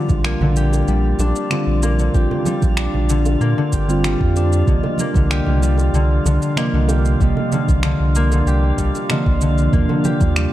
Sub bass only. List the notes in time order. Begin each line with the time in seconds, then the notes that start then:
0.10 A#1
0.40 A#1
0.88 A#1
1.19 A#1
1.67 A#1
2.14 A#1
2.62 A#1
2.94 A#1
3.41 A#2
3.73 G1
4.21 F2
4.68 C2
5.15 C2
5.47 C2
5.93 C2
6.25 C2
6.73 C2
7.20 C2
7.68 C2
8.00 C2
8.46 C2
8.78 C2
9.26 C2
9.73 D#2
10.21 D#2